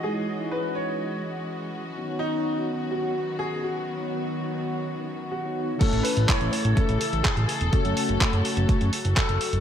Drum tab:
CC |----------------|----------------|----------------|x---------------|
HH |----------------|----------------|----------------|xxoxxxoxxxoxxxox|
CP |----------------|----------------|----------------|----x-------x---|
BD |----------------|----------------|----------------|o---o---o---o---|

CC |----------------|
HH |xxoxxxoxxxoxxxox|
CP |----x-------x---|
BD |o---o---o---o---|